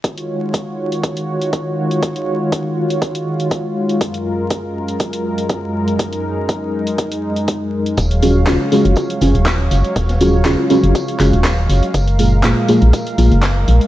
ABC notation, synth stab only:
X:1
M:4/4
L:1/8
Q:"Swing 16ths" 1/4=121
K:D#m
V:1 name="Synth stab"
z8 | z8 | z8 | z8 |
z [CEFG] [CEFG] [CEFG]2 [CEFG] z2 | z [CEFG] [CEFG] [CEFG]2 [CEFG] z2 | z [A,EG] [A,EG] [A,EG]2 [A,EG] z2 |]